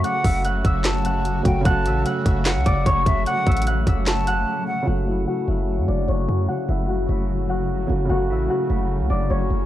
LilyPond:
<<
  \new Staff \with { instrumentName = "Flute" } { \time 4/4 \key fis \minor \tempo 4 = 149 fis''4 r4 a''4. g''8 | a''4 r4 fis''4. e''8 | fis''4 r4 a''4. fis''8 | r1 |
r1 | r1 | }
  \new Staff \with { instrumentName = "Harp" } { \time 4/4 \key fis \minor <fis'' fis'''>8 <e'' e'''>8 <fis'' fis'''>8 <e'' e'''>4 <fis'' fis'''>4. | <fis'' fis'''>8 <e'' e'''>8 <fis'' fis'''>8 <e'' e'''>4 <d'' d'''>8 <cis'' cis'''>4 | <fis'' fis'''>8 <e'' e'''>8 <fis'' fis'''>8 <e'' e'''>4 <fis'' fis'''>4. | <fis' fis''>8 <e' e''>8 <fis' fis''>8 <e' e''>4 <d' d''>8 <cis' cis''>4 |
<fis' fis''>8 <e' e''>8 <fis' fis''>8 <e' e''>4 <fis' fis''>4. | <fis' fis''>8 <e' e''>8 <fis' fis''>8 <e' e''>4 <d' d''>8 <cis' cis''>4 | }
  \new Staff \with { instrumentName = "Ambient pad" } { \clef bass \time 4/4 \key fis \minor << { fis'1~ | fis'1~ | fis'1 | fis'1~ |
fis'1 | fis'1 | } \\ { <cis fis a>1 | <cis fis a>1~ | <cis fis a>1 | <cis fis a>1~ |
<cis fis a>1~ | <cis fis a>1 | } >> }
  \new Staff \with { instrumentName = "Felt piano" } { \clef bass \time 4/4 \key fis \minor <cis fis a fis'>2.~ <cis fis a fis'>8 <cis fis a fis'>8 | <cis fis a fis'>1~ | <cis fis a fis'>1 | <cis fis a fis'>1~ |
<cis fis a fis'>2.~ <cis fis a fis'>8 <cis fis a fis'>8 | <cis fis a fis'>1 | }
  \new Staff \with { instrumentName = "808-style bass" } { \clef bass \time 4/4 \key fis \minor r8 fis,,4 fis,,2 fis,,8 | fis,,8 a,,8 r8 fis,,8. cis,16 fis,,8 fis,,8 fis,,8 | r8 a,,4 fis,,4. r4 | fis,,4 r8 fis,,8. fis,16 fis,,8 fis,,8 fis,8 |
r8 fis,,4 fis,,2 fis,,8 | fis,,8 a,,8 r8 fis,,8. cis,16 fis,,8 fis,,8 fis,,8 | }
  \new DrumStaff \with { instrumentName = "Drums" } \drummode { \time 4/4 hh8 <hho bd>8 hh8 <hh bd>8 <hc hh sn>8 hh8 hh8 <hh bd>8 | <hh bd>8 hh8 hh8 <hh bd>8 <hc hh sn>8 <hh bd>8 <hh bd>8 <hh bd>8 | hh8 <hh bd>32 hh32 hh32 hh32 hh8 <hh bd>8 <hc hh sn>8 hh8 r4 | r4 r4 r4 r4 |
r4 r4 r4 r4 | r4 r4 r4 r4 | }
>>